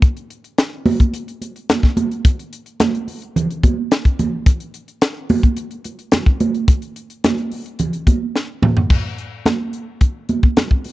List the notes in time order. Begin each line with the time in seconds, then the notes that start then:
0.02 kick, closed hi-hat, muted conga
0.17 closed hi-hat
0.30 closed hi-hat
0.44 closed hi-hat
0.58 snare, closed hi-hat
0.86 open hi-hat, muted conga, high conga
1.00 kick, closed hi-hat
1.13 closed hi-hat, muted conga
1.28 closed hi-hat
1.41 closed hi-hat, muted conga
1.56 closed hi-hat
1.69 snare, closed hi-hat, high conga
1.83 kick, snare
1.97 closed hi-hat, high conga
2.11 closed hi-hat
2.25 kick, closed hi-hat, muted conga
2.39 closed hi-hat
2.53 closed hi-hat
2.66 closed hi-hat
2.80 snare, closed hi-hat, high conga
2.95 closed hi-hat
3.08 open hi-hat, muted conga
3.22 closed hi-hat
3.36 closed hi-hat, muted conga, low conga
3.50 closed hi-hat
3.63 kick, closed hi-hat, muted conga, high conga
3.91 snare, closed hi-hat
4.05 kick, closed hi-hat
4.19 closed hi-hat, high conga, low conga
4.46 kick, closed hi-hat, muted conga
4.60 closed hi-hat
4.74 closed hi-hat
4.88 closed hi-hat
5.02 snare, closed hi-hat
5.29 open hi-hat, muted conga, high conga
5.43 kick, closed hi-hat
5.57 closed hi-hat, muted conga
5.71 closed hi-hat
5.85 closed hi-hat, muted conga
5.99 closed hi-hat
6.12 snare, closed hi-hat, high conga
6.26 kick
6.40 closed hi-hat, high conga
6.55 closed hi-hat
6.68 kick, closed hi-hat, muted conga
6.82 closed hi-hat
6.96 closed hi-hat
7.10 closed hi-hat
7.24 snare, closed hi-hat, high conga
7.38 closed hi-hat
7.52 open hi-hat, muted conga
7.66 closed hi-hat
7.79 closed hi-hat, muted conga, low conga
7.93 closed hi-hat
8.07 kick, closed hi-hat, muted conga, high conga
8.36 snare
8.62 mid tom, high conga, low conga
8.77 floor tom
8.90 kick, crash, muted conga
9.18 closed hi-hat
9.46 snare, closed hi-hat, high conga
9.73 closed hi-hat
10.01 kick, closed hi-hat, muted conga
10.29 closed hi-hat, muted conga, high conga
10.43 kick
10.57 snare, closed hi-hat, high conga
10.71 kick
10.84 open hi-hat, muted conga